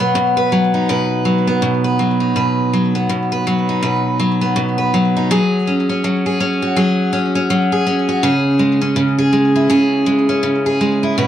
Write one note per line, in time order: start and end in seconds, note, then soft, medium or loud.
0.00 0.14 B2 medium
0.00 0.52 F#3 medium
0.00 1.46 B3 medium
0.00 0.74 F#4 medium
0.00 0.36 B4 medium
0.15 0.88 B2 medium
0.37 0.89 B4 medium
0.52 1.25 F#3 medium
0.74 2.19 D#4 medium
0.89 1.61 B2 medium
0.89 1.83 B4 medium
1.25 1.99 F#3 medium
1.47 2.94 B3 medium
1.62 2.35 B2 medium
1.84 2.35 B4 medium
1.99 2.73 F#3 medium
2.20 3.68 D#4 medium
2.36 3.08 B2 medium
2.36 3.31 B4 medium
2.73 3.46 F#3 medium
2.95 4.40 B3 medium
3.09 3.81 B2 medium
3.32 3.82 B4 medium
3.47 4.19 F#3 medium
3.69 5.15 D#4 medium
3.83 4.55 B2 medium
3.83 4.77 B4 medium
4.20 4.93 F#3 medium
4.41 5.38 B3 medium
4.56 5.38 B2 medium
4.78 5.30 B4 medium
4.94 5.30 F#3 medium
5.17 5.39 D#4 medium
5.31 6.03 F#3 medium
5.31 6.26 G#4 medium
5.67 5.89 C#4 medium
5.89 6.40 C#4 medium
6.04 6.75 F#3 medium
6.26 6.77 G#4 medium
6.40 7.12 C#4 medium
6.62 8.07 F#4 medium
6.77 7.49 F#3 medium
6.77 7.72 G#4 medium
7.13 7.35 C#4 medium
7.35 7.86 C#4 medium
7.50 8.32 F#3 medium
7.72 8.23 G#4 medium
7.87 8.81 C#4 medium
8.09 8.32 F#4 medium
8.23 8.95 C#3 medium
8.23 9.17 G#4 medium
8.59 9.31 G#3 medium
8.82 10.28 C#4 medium
8.96 9.68 C#3 medium
9.18 9.69 G#4 medium
9.33 10.05 G#3 medium
9.56 11.02 E4 medium
9.70 10.42 C#3 medium
9.70 10.65 G#4 medium
10.06 10.80 G#3 medium
10.29 11.26 C#4 medium
10.43 11.26 C#3 medium
10.66 11.17 G#4 medium
10.81 11.26 G#3 medium
11.03 11.26 E4 medium
11.18 11.27 B2 medium
11.18 11.27 B4 medium